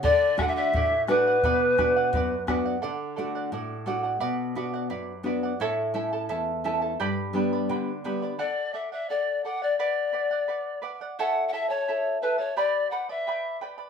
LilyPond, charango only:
\new Staff \with { instrumentName = "Charango" } { \time 2/4 \key d \major \tempo 4 = 86 <a' d'' fis''>8 <a' d'' fis''>16 <d'' fis''>16 <a' d'' fis''>8 <a' d'' fis''>16 <d'' fis''>16 | <b' d'' fis''>8 <b' d'' fis''>16 <d'' fis''>16 <b' d'' fis''>8 <b' d'' fis''>16 <d'' fis''>16 | <a' d'' fis''>8 <a' d'' fis''>16 <d'' fis''>16 <a' d'' fis''>8 <a' d'' fis''>16 <d'' fis''>16 | <b' d'' fis''>8 <b' d'' fis''>16 <d'' fis''>16 <b' d'' fis''>8 <b' d'' fis''>16 <d'' fis''>16 |
<e' a' cis'' e'' a''>8 <e' a' e'' a''>16 <e' a' a''>16 <e' a' e'' a''>8 <e' a' e'' a''>16 <e' a' a''>16 | <g' b' d'' g'' b''>8 <b' d'' g'' b''>16 <b' d'' b''>16 <b' d'' g'' b''>8 <b' d'' g'' b''>16 <b' d'' b''>16 | <a' d'' fis''>8 <a' d'' fis''>16 <d'' fis''>16 <a' d'' fis''>8 <a' d'' fis''>16 <d'' fis''>16 | <b' d'' fis''>8 <b' d'' fis''>16 <d'' fis''>16 <b' d'' fis''>8 <b' d'' fis''>16 <d'' fis''>16 |
<e' a' cis'' e'' a''>8 <e' a' e'' a''>16 <e' a' a''>16 <e' a' e'' a''>8 <e' a' e'' a''>16 <e' a' a''>16 | <g' b' d'' g'' b''>8 <b' d'' g'' b''>16 <b' d'' b''>16 <b' d'' g'' b''>8 <b' d'' g'' b''>16 <b' d'' b''>16 | }